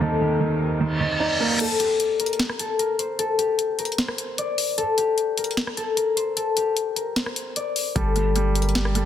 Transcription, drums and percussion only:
1.60 closed hi-hat medium
1.60 crash loud
1.80 closed hi-hat medium
2.00 closed hi-hat medium
2.20 closed hi-hat medium
2.26 closed hi-hat medium
2.33 closed hi-hat soft
2.39 snare loud
2.39 closed hi-hat medium
2.49 cross-stick medium
2.59 closed hi-hat medium
2.79 closed hi-hat medium
2.99 closed hi-hat medium
3.19 closed hi-hat medium
3.39 closed hi-hat medium
3.59 closed hi-hat medium
3.79 closed hi-hat medium
3.85 closed hi-hat medium
3.92 closed hi-hat soft
3.98 snare loud
3.98 closed hi-hat medium
4.08 cross-stick medium
4.18 closed hi-hat medium
4.38 closed hi-hat medium
4.58 open hi-hat medium
4.78 closed hi-hat medium
4.98 closed hi-hat medium
5.18 closed hi-hat medium
5.38 closed hi-hat medium
5.44 closed hi-hat medium
5.51 closed hi-hat soft
5.57 snare loud
5.57 closed hi-hat medium
5.67 cross-stick medium
5.77 closed hi-hat medium
5.97 closed hi-hat medium
6.17 closed hi-hat medium
6.37 closed hi-hat medium
6.57 closed hi-hat medium
6.77 closed hi-hat medium
6.96 closed hi-hat medium
7.16 snare loud
7.16 closed hi-hat medium
7.26 cross-stick medium
7.36 closed hi-hat medium
7.56 closed hi-hat medium
7.76 open hi-hat medium
7.96 kick loud
7.96 closed hi-hat medium
8.16 closed hi-hat medium
8.36 closed hi-hat medium
8.55 closed hi-hat medium
8.62 closed hi-hat medium
8.69 closed hi-hat soft
8.75 snare loud
8.75 closed hi-hat medium
8.85 cross-stick medium
8.95 closed hi-hat medium

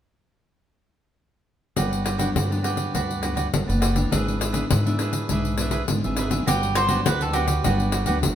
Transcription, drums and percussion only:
1.76 pandeiro medium
1.93 pandeiro soft
2.06 pandeiro medium
2.19 pandeiro medium
2.36 pandeiro medium
2.52 pandeiro soft
2.64 pandeiro medium
2.77 pandeiro soft
2.95 pandeiro medium
3.11 pandeiro soft
3.23 pandeiro medium
3.37 pandeiro medium
3.54 pandeiro medium
3.70 pandeiro soft
3.82 pandeiro medium
3.96 pandeiro soft
4.12 pandeiro medium
4.28 pandeiro soft
4.41 pandeiro medium
4.54 pandeiro medium
4.71 pandeiro medium
4.87 pandeiro soft
4.99 pandeiro medium
5.13 pandeiro medium
5.29 pandeiro medium
5.45 pandeiro soft
5.58 pandeiro medium
5.71 pandeiro soft
5.88 pandeiro medium
6.04 pandeiro soft
6.17 pandeiro medium
6.31 pandeiro medium
6.47 pandeiro medium
6.63 pandeiro soft
6.75 pandeiro medium
6.88 pandeiro medium
7.06 pandeiro medium
7.21 pandeiro soft
7.33 pandeiro medium
7.47 pandeiro medium
7.64 pandeiro medium
7.80 pandeiro soft
7.92 pandeiro medium
8.06 pandeiro soft
8.23 pandeiro medium

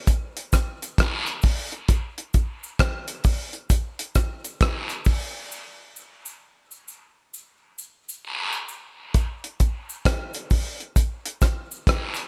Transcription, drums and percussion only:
0.07 kick loud
0.07 closed hi-hat medium
0.07 cabasa medium
0.37 closed hi-hat medium
0.52 kick medium
0.52 cross-stick medium
0.52 closed hi-hat medium
0.52 cabasa medium
0.82 closed hi-hat soft
0.82 cabasa medium
0.98 kick loud
0.98 cross-stick medium
0.98 closed hi-hat medium
0.98 long guiro medium
1.26 closed hi-hat soft
1.26 cabasa soft
1.42 kick loud
1.42 open hi-hat medium
1.42 cabasa medium
1.72 closed hi-hat soft
1.88 kick loud
1.88 closed hi-hat medium
1.88 cabasa medium
2.18 closed hi-hat soft
2.34 kick medium
2.34 closed hi-hat medium
2.34 cabasa medium
2.63 cabasa medium
2.79 kick loud
2.79 cross-stick loud
2.79 closed hi-hat loud
3.08 closed hi-hat medium
3.08 cabasa soft
3.24 kick medium
3.24 open hi-hat medium
3.24 cabasa medium
3.53 closed hi-hat soft
3.70 kick loud
3.70 closed hi-hat loud
3.70 cabasa medium
3.99 closed hi-hat medium
4.15 kick medium
4.15 cross-stick medium
4.15 closed hi-hat medium
4.15 cabasa medium
4.44 closed hi-hat soft
4.44 cabasa medium
4.61 kick loud
4.61 cross-stick medium
4.61 closed hi-hat loud
4.61 long guiro medium
4.89 closed hi-hat soft
4.89 cabasa soft
5.05 kick medium
5.05 open hi-hat medium
5.05 cabasa medium
5.52 cabasa medium
5.96 cabasa medium
6.25 cabasa medium
6.71 cabasa soft
6.88 cabasa medium
7.34 cabasa medium
7.78 cabasa medium
8.09 cabasa medium
8.25 long guiro medium
8.53 cabasa soft
8.68 cabasa medium
9.14 kick loud
9.14 closed hi-hat medium
9.14 cabasa medium
9.44 closed hi-hat soft
9.60 kick medium
9.60 closed hi-hat medium
9.60 cabasa medium
9.89 cabasa medium
10.05 kick loud
10.05 cross-stick loud
10.05 closed hi-hat medium
10.33 closed hi-hat medium
10.33 cabasa soft
10.50 kick medium
10.50 open hi-hat medium
10.50 cabasa medium
10.80 closed hi-hat soft
10.96 kick loud
10.96 closed hi-hat medium
10.96 cabasa medium
11.26 closed hi-hat medium
11.41 kick medium
11.41 cross-stick medium
11.41 closed hi-hat medium
11.41 cabasa medium
11.71 cabasa medium
11.87 kick loud
11.87 cross-stick loud
11.87 closed hi-hat medium
11.87 long guiro medium
12.14 closed hi-hat soft
12.14 cabasa soft

